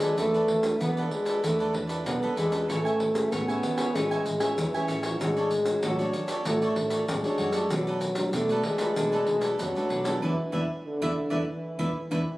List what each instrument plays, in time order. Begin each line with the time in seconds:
Already playing: fingered electric bass D#2, nylon-string guitar F#3, trombone G#3
0.00 nylon-string guitar D4 A4 B4, cavaquinho A4 B4 D5, pandeiro, shaker
0.18 fingered electric bass E2, nylon-string guitar E3, trombone A3, cavaquinho E4 A4 B4 D5, pandeiro, shaker, surdo
0.34 cavaquinho A4 B4 D5, pandeiro, shaker
0.48 muted cavaquinho stroke, pandeiro
0.63 nylon-string guitar D4 A4 B4, pandeiro, shaker, surdo
0.80 nylon-string guitar B2, fingered electric bass E3, trombone B3, cavaquinho E4 A4 B4 D5, pandeiro, shaker, surdo
0.97 nylon-string guitar D4 A4 B4, cavaquinho A4 B4 D5, pandeiro, shaker
1.10 trombone G#3, pandeiro
1.25 cavaquinho A4 B4 D5, pandeiro, shaker
1.43 fingered electric bass E2, nylon-string guitar E3 D4 A4 B4, trombone A3, cavaquinho E4 A4 B4 D5, pandeiro, shaker, surdo
1.59 cavaquinho A4 B4 D5, pandeiro, shaker, surdo
1.73 fingered electric bass E2, nylon-string guitar D4 A4 B4, muted cavaquinho stroke, pandeiro, surdo
1.87 cavaquinho A4 B4 D5, pandeiro, shaker, surdo
2.05 fingered electric bass B1, nylon-string guitar B2, trombone B3, pandeiro, shaker, surdo
2.22 nylon-string guitar D4 A4 B4, cavaquinho A4 B4 D5, pandeiro, shaker
2.36 fingered electric bass E2, trombone G#3, cavaquinho E4 A4 B4 D5, pandeiro, shaker
2.50 nylon-string guitar C#4 G#4 B4, cavaquinho A4 B4 D5, pandeiro, shaker
2.68 fingered electric bass A1, nylon-string guitar A3, trombone A3, cavaquinho A4 C#5 E5 G#5, pandeiro, shaker, surdo
2.85 cavaquinho C#5 E5 G#5, pandeiro, shaker
2.99 muted cavaquinho stroke, pandeiro
3.14 nylon-string guitar C#4 G#4 B4, pandeiro, shaker, surdo
3.31 fingered electric bass A2, nylon-string guitar E3, trombone B3, cavaquinho A4 C#5 E5 G#5, pandeiro, shaker, surdo
3.48 nylon-string guitar C#4 G#4 B4, cavaquinho C#5 E5 G#5, pandeiro, shaker
3.63 pandeiro, shaker
3.77 nylon-string guitar C#4 G#4 B4, cavaquinho C#5 E5 G#5, pandeiro, shaker
3.94 fingered electric bass A1, trombone G#3, nylon-string guitar C#4 G#4 B4, cavaquinho A4 C#5 E5 G#5, pandeiro, shaker, surdo
4.11 cavaquinho C#5 E5 G#5, pandeiro, shaker, surdo
4.25 fingered electric bass A1, muted cavaquinho stroke, pandeiro, shaker, surdo
4.39 nylon-string guitar C#4 G#4 B4, cavaquinho C#5 E5 G#5, pandeiro, shaker, surdo
4.57 fingered electric bass E2, nylon-string guitar E3, trombone E3, pandeiro, shaker, surdo
4.74 nylon-string guitar C#4 G#4 B4, cavaquinho C#5 E5 G#5, pandeiro, shaker
4.87 fingered electric bass A1, cavaquinho A4 C#5 E5 G#5, pandeiro, shaker
5.03 cavaquinho C#5 E5 G#5, pandeiro, shaker
5.20 fingered electric bass A1, trombone G#3, nylon-string guitar D4 F#4 C#5, cavaquinho F#4 A4 C#5 D5, pandeiro, shaker, surdo
5.36 cavaquinho A4 C#5 D5, pandeiro, shaker
5.51 muted cavaquinho stroke, pandeiro, shaker
5.65 nylon-string guitar D4 F#4 C#5, pandeiro, shaker, surdo
5.82 fingered electric bass A2, trombone F#3, nylon-string guitar A3, cavaquinho F#4 A4 C#5 D5, pandeiro, shaker, surdo
5.99 nylon-string guitar D4 F#4 C#5, cavaquinho A4 C#5 D5, pandeiro, shaker
6.13 pandeiro, shaker
6.28 cavaquinho A4 C#5 D5, pandeiro, shaker
6.45 fingered electric bass A1, nylon-string guitar A3 D4 F#4 C#5, trombone A3, cavaquinho F#4 A4 C#5 D5, pandeiro, shaker, surdo
6.62 cavaquinho A4 C#5 D5, pandeiro, shaker, surdo
6.76 fingered electric bass A1, nylon-string guitar D4 F#4 C#5, muted cavaquinho stroke, pandeiro, surdo
6.90 cavaquinho A4 C#5 D5, pandeiro, shaker, surdo
7.08 fingered electric bass A1, trombone G#3, pandeiro, shaker, surdo
7.24 nylon-string guitar D4 F#4 C#5, cavaquinho A4 C#5 D5, pandeiro, shaker
7.38 fingered electric bass F#2, cavaquinho F#4 A4 C#5 D5, pandeiro
7.52 nylon-string guitar A3 D4 F#4, cavaquinho A4 C#5 D5, pandeiro, shaker
7.70 fingered electric bass B1, nylon-string guitar B2, trombone F#3, cavaquinho D4 A4 B4 D5, pandeiro, shaker, surdo
7.87 cavaquinho A4 B4 D5, pandeiro, shaker
8.01 muted cavaquinho stroke, pandeiro, shaker
8.15 nylon-string guitar A3 D4 F#4, pandeiro, shaker, surdo
8.33 fingered electric bass B2, nylon-string guitar F#3, trombone A3, cavaquinho D4 A4 B4 D5, pandeiro, shaker, surdo
8.49 nylon-string guitar A3 D4 F#4, cavaquinho A4 B4 D5, pandeiro, shaker
8.63 trombone G#3, pandeiro, surdo
8.78 cavaquinho A4 B4 D5, pandeiro, shaker
8.96 fingered electric bass B1, nylon-string guitar B2 A3 D4 F#4, cavaquinho D4 A4 B4 D5, pandeiro, shaker, surdo
9.12 cavaquinho A4 B4 D5, pandeiro, shaker, surdo
9.27 fingered electric bass B1, nylon-string guitar A3 D4 F#4, muted cavaquinho stroke, pandeiro, surdo
9.41 cavaquinho A4 B4 D5, pandeiro, shaker, surdo
9.59 fingered electric bass F#2, trombone F#3, nylon-string guitar F#3, pandeiro, shaker, surdo
9.75 nylon-string guitar A3 D4 F#4, cavaquinho A4 B4 D5, pandeiro, shaker
9.89 fingered electric bass B1, cavaquinho D4 A4 B4 D5, pandeiro
10.04 nylon-string guitar B3 D4 G#4, cavaquinho A4 B4 D5, pandeiro, shaker
10.22 fingered electric bass E2, trombone E3, nylon-string guitar B3 D4 E4, cavaquinho B4 D5 E5, surdo
10.52 fingered electric bass E2, nylon-string guitar B3 D4 E4, cavaquinho B4 D5 E5, surdo
10.85 trombone D3
11.01 fingered electric bass E2, nylon-string guitar B3 D4 E4, cavaquinho B4 D5 E5, surdo
11.30 fingered electric bass E2, nylon-string guitar B3 D4 E4, cavaquinho B4 D5 E5, surdo
11.48 trombone E3
11.78 fingered electric bass E2, nylon-string guitar B3 D4 E4, cavaquinho B4 D5 E5, surdo
12.10 fingered electric bass E2, trombone E3, nylon-string guitar B3 D4 E4, cavaquinho B4 D5 E5, surdo